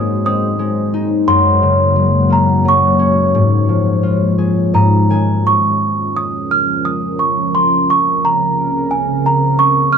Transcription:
Already playing: harp G#2 D#3 G#3 A#3 C#4, ambient pad G#3 D#4 C5, celesta D#6
0.26 harp C4, celesta D#6
0.59 harp G#3
0.94 harp D#4
1.28 harp F#2, ambient pad A#3 F#4 C#5, celesta C6
1.62 harp C#3
1.96 harp F#3
2.30 harp A#3, celesta A#5
2.65 harp F#3, celesta C#6
2.99 harp C#4
3.35 harp G#2
3.69 harp F3
4.03 harp F4
4.38 harp G#4
4.74 harp G#2 D#5, celesta A#5
5.10 harp D#3 G#5
5.47 ambient pad F3 C#4 A#4, celesta C#6
6.17 celesta D#6
6.51 celesta F6
6.85 celesta D#6
7.19 celesta C#6
7.55 ambient pad C#3 C4 A#4, celesta C6
7.90 celesta C#6
8.25 celesta A#5
8.91 celesta G#5
9.26 celesta A#5
9.59 celesta C#6
9.93 celesta F6

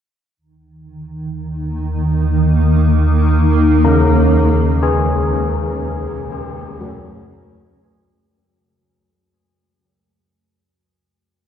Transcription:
0.36 synth drone D#2 D#3, ambient pad D#3
1.12 ambient pad D#4
1.21 ambient pad A#3
3.84 church bells C#3 A#4
4.34 ambient pad D#2
4.83 church bells G#4
5.01 ambient pad B2
6.09 ambient pad F#3 C#4
6.81 church bells F#3

